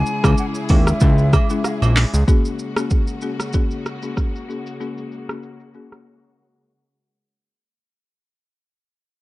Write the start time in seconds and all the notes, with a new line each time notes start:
Already playing: C#3 G#3 C#4 E4 G#4 G#5
0.06 shaker
0.24 C#2 G#3 C#4 E4 G#4, kick, cross-stick, high agogo, shaker
0.38 F#5, shaker
0.55 shaker
0.69 D#2 G#3 C#4 E4 G#4 E5, kick, open hi-hat, high agogo, shaker
0.87 cross-stick, shaker
1.00 C#2 G#3 C#4 E4 G#4, kick, shaker
1.18 shaker
1.33 kick, cross-stick, high agogo, shaker
1.50 G#3 C#4 E4 G#4, shaker
1.64 cross-stick, low woodblock, shaker
1.82 A#1, high agogo, shaker
1.96 clap, open hi-hat, shaker
2.14 C#2, shaker
2.28 C#3 G#3 A#3 C#4 F#4 G#4, kick, shaker
2.45 shaker
2.59 shaker
2.76 A#3 C#4 F#4 G#4, cross-stick, shaker
2.90 kick, shaker
3.07 shaker
3.21 A#3 C#4 F#4 G#4, shaker
3.40 cross-stick, shaker
3.53 A#3 C#4 F#4 G#4, kick, shaker
3.71 shaker
3.86 cross-stick, shaker
4.02 A#3 C#4 F#4 G#4, shaker
4.17 kick, cross-stick, shaker
4.36 shaker
4.49 A#3 C#4 F#4 G#4, shaker
4.67 shaker
4.80 A#3 C#4 F#4 G#4, shaker
4.98 shaker
5.12 shaker
5.29 A#3 C#4 F#4 G#4, cross-stick, shaker
5.43 shaker
5.60 shaker
5.74 A#3 C#4 F#4 G#4, shaker
5.92 cross-stick, shaker